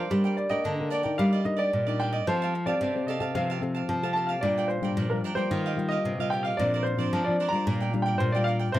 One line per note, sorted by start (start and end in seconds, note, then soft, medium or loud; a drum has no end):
0.00 0.38 C5 medium
0.10 0.63 G3 medium
0.10 0.48 A#3 medium
0.10 0.23 D4 soft
0.10 0.48 D4 medium
0.10 0.24 A#4 soft
0.10 0.48 A#4 medium
0.10 0.24 D5 medium
0.10 0.23 G5 medium
0.24 0.37 A#4 medium
0.24 0.37 D5 medium
0.24 0.37 G5 medium
0.37 0.50 D5 medium
0.37 muted cavaquinho stroke soft
0.49 0.74 A#3 medium
0.49 0.74 D4 medium
0.49 0.74 A#4 medium
0.49 0.64 A#4 medium
0.49 0.64 D5 medium
0.49 0.88 D#5 loud
0.49 0.63 G5 medium
0.64 1.17 D3 medium
0.64 0.89 D4 soft
0.64 0.90 A#4 medium
0.64 0.91 D5 medium
0.64 0.91 G5 medium
0.80 1.02 A#3 medium
0.80 1.02 D4 medium
0.80 1.02 A#4 medium
0.90 1.04 D4 medium
0.90 1.04 A#4 medium
0.90 1.17 D5 medium
0.90 1.03 D5 medium
0.90 1.02 G5 medium
1.03 1.42 D4 medium
1.03 1.42 D#4 medium
1.03 1.18 A#4 medium
1.03 1.42 A#4 medium
1.03 1.17 D5 medium
1.03 1.17 G5 medium
1.18 1.71 G3 medium
1.18 1.31 D4 medium
1.18 1.32 G4 medium
1.18 1.31 D5 medium
1.18 1.32 D#5 soft
1.18 1.44 F5 medium
1.33 1.44 G4 medium
1.33 1.45 D5 medium
1.33 1.45 D#5 medium
1.45 1.71 D4 medium
1.45 1.71 D#4 medium
1.45 1.71 A#4 medium
1.45 1.60 D#5 medium
1.45 muted cavaquinho stroke soft
1.57 1.85 G4 medium
1.57 1.84 D5 medium
1.57 2.01 D5 medium
1.57 1.85 D#5 medium
1.73 2.19 A#2 medium
1.73 2.25 G3 medium
1.87 2.23 D4 medium
1.87 2.23 D#4 medium
1.87 1.99 G4 medium
1.87 2.23 A#4 medium
1.87 1.99 D5 medium
1.87 2.00 D#5 medium
2.00 2.12 D4 medium
2.00 2.13 G4 medium
2.00 2.11 D5 medium
2.00 2.12 D#5 medium
2.00 2.14 G5 medium
2.12 2.27 G4 soft
2.12 2.26 D5 medium
2.12 2.27 D#5 medium
2.12 2.26 D#5 medium
2.27 2.79 F3 medium
2.27 2.53 C4 medium
2.27 2.53 G4 medium
2.27 2.40 G4 medium
2.27 2.40 A4 soft
2.27 2.53 A4 medium
2.27 2.69 C5 medium
2.27 2.41 F5 medium
2.27 2.41 A5 medium
2.42 2.54 G4 medium
2.42 2.54 F5 medium
2.42 2.54 A5 medium
2.55 muted cavaquinho stroke soft
2.66 2.90 C4 medium
2.66 2.90 G4 medium
2.66 2.81 G4 medium
2.66 2.90 A4 medium
2.66 3.09 D5 medium
2.66 2.80 F5 medium
2.66 2.80 A5 medium
2.81 3.33 C3 medium
2.81 3.08 G4 medium
2.81 3.07 A4 medium
2.81 3.08 F5 medium
2.81 3.09 A5 medium
2.95 3.18 C4 medium
2.95 3.18 G4 medium
2.95 3.18 A4 medium
3.07 3.21 G4 medium
3.07 3.21 A4 medium
3.07 3.33 D#5 medium
3.07 3.20 F5 medium
3.07 3.19 A5 medium
3.20 3.30 C4 medium
3.20 3.30 G4 medium
3.20 3.35 G4 medium
3.20 3.31 A4 medium
3.20 3.34 F5 medium
3.20 3.33 A5 medium
3.35 3.81 C3 loud
3.35 3.86 F3 medium
3.35 3.58 C4 medium
3.35 3.58 G4 medium
3.35 3.48 G4 soft
3.35 3.48 A4 soft
3.35 3.58 A4 medium
3.35 3.85 F5 medium
3.35 3.49 F5 soft
3.35 3.49 A5 medium
3.50 3.62 G4 medium
3.50 3.62 F5 medium
3.50 3.62 A5 medium
3.61 3.98 C4 medium
3.61 3.98 G4 medium
3.61 3.98 A4 medium
3.61 muted cavaquinho stroke soft
3.75 4.02 G4 soft
3.75 4.02 F5 medium
3.75 4.01 A5 medium
3.89 4.40 C3 medium
3.89 4.35 F3 medium
4.02 4.39 C4 medium
4.02 4.39 G4 medium
4.02 4.15 G4 medium
4.02 4.39 A4 medium
4.02 4.16 F5 medium
4.02 4.16 A5 medium
4.13 4.29 G4 soft
4.13 4.28 A4 medium
4.13 4.28 F5 medium
4.13 4.29 A5 medium
4.18 4.28 A5 medium
4.27 4.42 F5 medium
4.27 4.42 A5 medium
4.31 4.43 G4 soft
4.41 4.94 A#2 medium
4.41 4.79 G3 medium
4.41 4.56 D4 soft
4.41 4.80 D4 soft
4.41 4.80 F4 medium
4.41 4.56 A#4 medium
4.41 4.67 D5 medium
4.41 4.56 D5 medium
4.45 4.56 G5 medium
4.58 4.69 A#4 medium
4.58 4.70 D5 medium
4.58 4.70 G5 medium
4.68 5.11 C5 medium
4.68 muted cavaquinho stroke soft
4.82 5.06 G3 medium
4.82 5.06 D4 medium
4.82 5.06 F4 medium
4.82 4.97 A#4 medium
4.82 4.96 D5 medium
4.82 4.96 G5 medium
4.97 5.20 A#2 medium
4.97 5.48 F3 medium
4.97 5.23 D4 soft
4.97 5.24 A#4 soft
4.97 5.24 D5 medium
4.97 5.24 G5 medium
5.10 5.33 G3 medium
5.10 5.34 D4 medium
5.10 5.34 F4 medium
5.10 5.16 A#4 medium
5.24 5.37 D4 medium
5.24 5.37 A#4 medium
5.24 5.36 D5 medium
5.24 5.35 G5 medium
5.35 5.73 G3 medium
5.35 5.73 A#3 medium
5.35 5.73 F4 medium
5.35 5.50 A#4 medium
5.35 5.92 C5 loud
5.35 5.50 D5 medium
5.35 5.49 G5 medium
5.51 6.02 D#3 medium
5.51 5.64 F4 soft
5.51 5.64 G4 soft
5.51 5.65 D#5 soft
5.51 5.65 F5 medium
5.66 5.78 G4 medium
5.66 5.78 D#5 medium
5.66 5.78 F5 medium
5.76 6.13 G3 medium
5.76 6.14 A#3 medium
5.76 6.14 F4 medium
5.76 muted cavaquinho stroke soft
5.89 6.32 D#5 loud
5.89 6.18 D#5 medium
5.89 6.17 F5 medium
5.93 6.18 G4 medium
6.04 6.56 A#2 medium
6.04 6.51 C3 medium
6.18 6.55 G3 medium
6.18 6.55 A#3 medium
6.18 6.55 F4 medium
6.18 6.31 G4 medium
6.18 6.32 D#5 medium
6.18 6.32 F5 medium
6.30 6.44 F4 medium
6.30 6.45 G4 medium
6.30 6.45 D#5 medium
6.30 6.43 F5 medium
6.30 6.44 G5 loud
6.43 6.59 G4 medium
6.43 6.58 D#5 medium
6.43 6.58 F5 medium
6.43 6.57 F5 medium
6.57 7.10 A#2 medium
6.57 6.95 F3 medium
6.57 6.95 C4 medium
6.57 6.72 D4 soft
6.57 6.96 D4 medium
6.57 6.72 A#4 soft
6.57 6.72 C5 medium
6.57 6.83 D5 medium
6.62 6.73 D5 medium
6.74 6.85 A#4 medium
6.74 6.86 C5 medium
6.74 6.86 D5 medium
6.83 7.26 C5 medium
6.83 muted cavaquinho stroke soft
6.97 7.12 F3 medium
6.97 7.21 C4 medium
6.97 7.21 D4 medium
6.97 7.13 A#4 medium
6.97 7.12 C5 medium
6.97 7.11 D5 medium
7.13 7.27 F3 medium
7.13 7.39 D4 medium
7.13 7.39 A#4 medium
7.13 7.40 C5 medium
7.13 7.40 D5 medium
7.24 7.50 F3 medium
7.24 7.50 D5 medium
7.28 7.50 C4 medium
7.28 7.50 D4 medium
7.40 7.52 D4 medium
7.40 7.53 A#4 medium
7.40 7.53 C5 medium
7.40 7.51 D5 medium
7.49 7.89 G3 medium
7.49 7.89 D4 medium
7.49 7.65 D5 medium
7.49 8.01 A#5 loud
7.53 7.89 F4 medium
7.53 7.67 A#4 medium
7.53 7.66 C5 medium
7.67 8.18 A#2 medium
7.67 7.79 F4 medium
7.67 7.80 A#4 medium
7.67 7.80 D5 soft
7.67 7.79 G5 medium
7.80 7.92 A#4 medium
7.80 7.93 D5 medium
7.80 7.93 G5 medium
7.93 8.30 G3 medium
7.93 8.30 D4 medium
7.93 8.30 F4 medium
7.93 muted cavaquinho stroke soft
8.02 8.19 G5 medium
8.02 8.32 G5 medium
8.07 8.34 A#4 medium
8.07 8.33 D5 medium
8.18 8.72 A#2 medium
8.18 8.32 C5 medium
8.32 8.71 G3 medium
8.32 8.71 D4 medium
8.32 8.71 F4 medium
8.32 8.47 D5 medium
8.32 8.47 G5 medium
8.37 8.46 A#4 medium
8.44 8.60 F4 medium
8.44 8.60 A#4 medium
8.44 8.51 F5 loud
8.48 8.59 D5 medium
8.48 8.58 G5 medium
8.59 8.74 A#4 medium
8.59 8.73 D5 medium
8.59 8.73 G5 medium
8.72 8.79 C3 medium
8.72 8.79 G3 medium
8.72 8.79 A#3 medium
8.72 8.79 E4 soft
8.72 8.79 E4 medium
8.72 8.79 A#4 medium
8.72 8.79 C5 loud
8.72 8.79 C5 medium